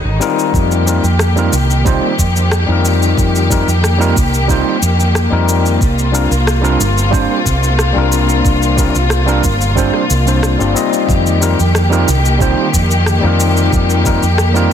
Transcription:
Already playing: D#3 D#4
0.05 G#1
0.20 G3 C4 D#4 F4 A#4, shaker
0.39 shaker
0.54 F2 D#3 A#3 G4, kick, shaker
0.72 shaker
0.86 G3 C4 D#4 F4 A#4, shaker
1.03 F2, shaker
1.19 cross-stick, shaker
1.36 G3 C4 D#4 F4 A#4, shaker
1.53 C2, shaker
1.70 shaker
1.85 G3 C4 D#4 F4 C5, kick, shaker
2.19 F2, kick, shaker
2.36 shaker
2.51 cross-stick, shaker
2.66 F2 G3 C4 D#4
2.70 F4 A#4
2.85 shaker
3.02 shaker
3.18 F2, kick, shaker
3.36 shaker
3.49 G3 C4 D#4 F4 A#4, kick, shaker
3.67 F2, shaker
3.84 cross-stick, shaker
3.98 G3 C4 D#4 F4 A#4, shaker
4.16 C2, kick, shaker
4.34 shaker
4.48 G3 C4 D#4 F4 C5, kick, shaker
4.82 F2, shaker
5.00 shaker
5.15 cross-stick, shaker
5.31 F2 G3 C4 D#4 F4 A#4
5.49 shaker
5.66 shaker
5.80 C2 C3 F4, kick, shaker
5.99 shaker
6.12 G3 C4 D4 F4 A#4, shaker
6.31 C2, shaker
6.47 cross-stick, shaker
6.62 G3 C4 D4 F4 A#4, shaker
6.80 G1, shaker
6.98 shaker
7.11 G3 C4 D4 F4 C5, kick, shaker
7.46 C2, kick, shaker
7.63 shaker
7.79 cross-stick, shaker
7.93 C2 G3 C4 D4
7.97 F4 A#4
8.12 shaker
8.29 shaker
8.45 C2, kick, shaker
8.62 shaker
8.76 G3 C4 D4 F4 A#4, kick, shaker
8.95 C2, shaker
9.10 cross-stick, shaker
9.26 G3 C4 D4 F4 A#4, shaker
9.44 G1, kick, shaker
9.61 shaker
9.75 G3 C4 D4 F4 C5, kick, shaker
9.94 cross-stick
10.10 C2, shaker
10.25 G3 C4 D4 F4 C5, shaker
10.43 cross-stick, shaker
10.58 G1 G3 C4 D4 F4 D5, shaker
10.74 G3 C4 D#4 F4 D#5, shaker
10.93 shaker
11.08 F2 D#3 A#3 G4, kick, shaker
11.26 shaker
11.40 G3 C4 D#4 F4 A#4, shaker
11.59 F2, shaker
11.75 cross-stick, shaker
11.90 G3 C4 D#4 F4 A#4, shaker
12.08 C2, shaker
12.25 shaker
12.39 G3 C4 D#4 F4 C5, kick, shaker
12.73 F2, kick, shaker
12.91 shaker
13.06 cross-stick, shaker
13.21 F2 G3 C4 D#4
13.25 F4 A#4
13.40 shaker
13.57 shaker
13.72 F2, kick, shaker
13.90 shaker
14.04 G3 C4 D#4 F4 A#4, kick, shaker
14.22 F2, shaker
14.38 cross-stick, shaker
14.53 G3 C4 D#4 F4 A#4, shaker

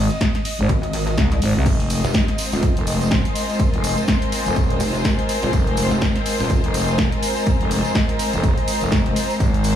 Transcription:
Already playing: D#5
0.11 closed hi-hat
0.21 kick, snare, closed hi-hat
0.35 snare, closed hi-hat
0.45 open hi-hat, ride
0.59 G#1, closed hi-hat
0.69 G#1, kick, closed hi-hat
0.83 closed hi-hat
0.93 open hi-hat, ride
1.07 closed hi-hat
1.18 C2, kick, snare, closed hi-hat
1.32 C2, closed hi-hat
1.42 G#1, open hi-hat, ride
1.56 C2
1.66 F1 G#3 C4 F4 A#4 C5, kick, closed hi-hat, tambourine, crash
1.80 closed hi-hat
1.90 open hi-hat, ride, tambourine
2.04 F1 C6, closed hi-hat, tambourine
2.13 kick, snare, closed hi-hat, tambourine
2.23 G#5
2.28 snare, closed hi-hat
2.38 open hi-hat, ride, tambourine
2.52 D#1, tambourine
2.63 kick, closed hi-hat, tambourine
2.77 F1, closed hi-hat
2.87 open hi-hat, ride, tambourine
3.01 closed hi-hat, tambourine
3.11 kick, snare, closed hi-hat
3.25 closed hi-hat
3.35 open hi-hat, ride, tambourine
3.50 tambourine
3.59 kick, closed hi-hat, tambourine
3.73 F1, closed hi-hat
3.84 open hi-hat, ride, tambourine
3.98 closed hi-hat, tambourine
4.07 kick, snare, closed hi-hat, tambourine
4.22 closed hi-hat
4.32 open hi-hat, ride, tambourine
4.46 F1, closed hi-hat, tambourine
4.56 D#1, kick, closed hi-hat, tambourine
4.70 closed hi-hat
4.80 F1, open hi-hat, ride, tambourine
4.95 closed hi-hat, tambourine
5.05 kick, snare, closed hi-hat, tambourine
5.19 closed hi-hat
5.29 open hi-hat, ride, tambourine
5.42 D#1, tambourine
5.53 F1, kick, closed hi-hat, tambourine
5.67 closed hi-hat
5.77 open hi-hat, ride, tambourine
5.91 F1, tambourine
6.02 kick, snare, closed hi-hat, tambourine
6.16 snare, closed hi-hat
6.22 A#5
6.26 open hi-hat, ride, tambourine
6.40 D#1, tambourine
6.50 kick, closed hi-hat, tambourine
6.64 F1, closed hi-hat
6.74 open hi-hat, ride, tambourine
6.88 closed hi-hat, tambourine
6.98 kick, snare, closed hi-hat, tambourine
7.12 closed hi-hat
7.23 open hi-hat, ride, tambourine
7.36 tambourine
7.46 kick, closed hi-hat, tambourine
7.61 F1, closed hi-hat
7.71 open hi-hat, ride, tambourine
7.84 closed hi-hat, tambourine
7.95 kick, snare, closed hi-hat, tambourine
8.09 closed hi-hat
8.19 open hi-hat, ride, tambourine
8.33 F1, closed hi-hat, tambourine
8.43 D#1, kick, closed hi-hat, tambourine
8.58 closed hi-hat
8.68 open hi-hat, ride, tambourine
8.81 F1, closed hi-hat, tambourine
8.92 kick, snare, closed hi-hat, tambourine
9.06 closed hi-hat
9.16 open hi-hat, ride, tambourine
9.30 tambourine
9.40 G#1 D#4 C5, kick, closed hi-hat, tambourine
9.48 D#5
9.54 closed hi-hat
9.64 open hi-hat, ride, tambourine

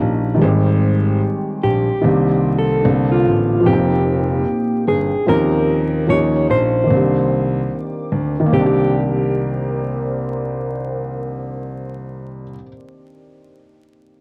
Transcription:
Already playing: F3 A#3 C#4 D#4 G4 D#5 F5 C#6
0.01 A#1
0.34 D#3 G3
0.41 G#1 G#3 C4 G4 G5 C6
0.48 G4
1.63 A#1 G4
2.01 C2 D#3 A#3 C4 D6
2.06 D4 G4
2.58 A4
2.82 C2 D3 A#3 C4
2.87 D4 A4
3.12 F4
3.26 A1
3.60 F3 A#3
3.66 F1 C4 D#4 G4 G5 D#6
3.73 G5
4.88 G1 G#4
5.27 D#2 F3 C4 C#4 G4 A#4 A#5
5.32 D#4 G4
6.07 D#2 F3 A#3 C#4 C#5
6.12 D#4 G4
6.50 A#1 C5
6.84 D#3 A#3
6.90 C2 C4 D4 A#4 D5 D6
6.97 G4
8.12 D2
8.40 D#3
8.46 A#3
8.53 C2 C4 G4 A#4 C5 D5
8.59 D4
8.66 G4

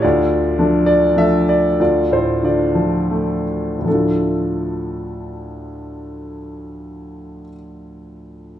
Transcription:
0.02 D2 F4 D5
0.59 F3 A3 D4
0.86 D5
1.16 F3 A3 D4 E5
1.49 D5
1.80 D2 F4 D5
2.11 A2 C5
2.43 D3 F4 D5
2.75 F3
3.11 A3
3.79 D2 A2
3.85 F3 A3 A4
3.91 D4 F4

